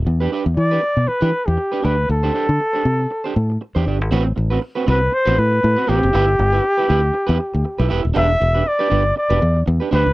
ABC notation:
X:1
M:4/4
L:1/16
Q:"Swing 16ths" 1/4=119
K:Ador
V:1 name="Flugelhorn"
z4 d4 B3 G3 B2 | A12 z4 | z6 B2 c2 B4 G2- | G12- G2 z2 |
e4 d4 d4 z2 B2 |]
V:2 name="Clean electric guitar"
z [DGB] [DGB] z2 [DGB] z3 [DGB] z3 [DGB] [DGd] z | z [DGc] [DGc] z2 [DGc] z3 [DGc] z3 [DGc] [DGd] z | [CFB] z2 [CFB] z [CFB] [CFB] z2 [CFB] z3 [CFB] [CFB]2 | [EGB] z2 [EGB] z [EGB] [EGB] z2 [EGB] z3 [EGB] [EGB] z |
[DGB] z2 [DGB] z [DGB] [DGB] z2 [DGB] z3 [DGB] [DGc] z |]
V:3 name="Fingered electric bass" clef=bass
E,,2 z E,, E,2 z B,, z E, z E,, z2 D,,2 | D,,2 z D, z2 C,2 z2 A,,2 z E,, G,,, ^G,,, | A,,,2 A,,,2 z2 C,,2 z A,,, A,,2 A,, z A,,, F,,, | G,,,2 G,,,2 z2 D,,2 z E,, z D,, z B,,, E,,, ^D,,, |
E,,,2 E,,,2 z2 G,,,2 z E,,, E,,2 E,, z D,, ^C,, |]